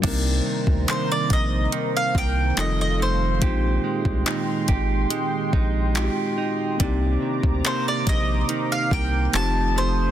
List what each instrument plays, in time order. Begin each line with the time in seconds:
0.01 analog synth bass C2, clean electric guitar C3 D4, analog synth pad D#3 A#4 C5 A#5, tine electric piano G3 A#3 C4, kick, closed hi-hat, crash
0.06 tine electric piano D#4 A#4
0.46 clean electric guitar D#3
0.67 analog synth bass D2, kick
0.88 clean electric guitar A#3, mandolin C5, clap, closed hi-hat
1.12 mandolin D5
1.30 analog synth bass A#1, mandolin D#5, kick, closed hi-hat
1.72 clean electric guitar D#3, closed hi-hat
1.97 mandolin F5
2.15 analog synth bass C2, clean electric guitar A#3, mandolin G5, kick
2.56 analog synth bass F1, clean electric guitar F2, tine electric piano G3 C4 D#4 F4 A4, analog synth pad A4 F5 C6, mandolin D#5, clap, closed hi-hat
2.81 mandolin D#5
2.99 clean electric guitar A3, mandolin C5
3.39 analog synth bass A#1, clean electric guitar A#2 G4, tine electric piano G#3 C4 D#4, analog synth pad G#3 G5, kick, closed hi-hat
3.44 tine electric piano F4 G4
3.84 clean electric guitar G#3
4.05 analog synth bass C2, kick
4.26 clean electric guitar D#4, clap, closed hi-hat
4.68 analog synth bass G#1, clean electric guitar G4, kick, closed hi-hat
5.10 clean electric guitar G#3, closed hi-hat
5.53 analog synth bass A#1, clean electric guitar D#4, kick
5.94 tine electric piano G#3 C4 D#4 F4 F#4, clean electric guitar G4, clap, closed hi-hat
6.04 tine electric piano G4
6.38 clean electric guitar D#4
6.78 analog synth bass C2, clean electric guitar C3 D4, tine electric piano A#3 C4, analog synth pad C5 A#5 D6, kick, closed hi-hat
6.83 tine electric piano D#4 G4
7.22 clean electric guitar D#3
7.43 analog synth bass D2, kick
7.64 clean electric guitar A#3, mandolin C5, clap, closed hi-hat
7.88 mandolin D5
8.07 analog synth bass A#1, mandolin D#5, kick, closed hi-hat
8.49 clean electric guitar D#3, closed hi-hat
8.72 mandolin F5
8.91 analog synth bass C2, clean electric guitar A#3, mandolin G5, kick
9.32 analog synth bass F1, clean electric guitar F2, tine electric piano A3 C4 D#4 F4 G4, analog synth pad F4 C5 A5 D#6, mandolin A5, clap, closed hi-hat
9.76 clean electric guitar A3, mandolin C5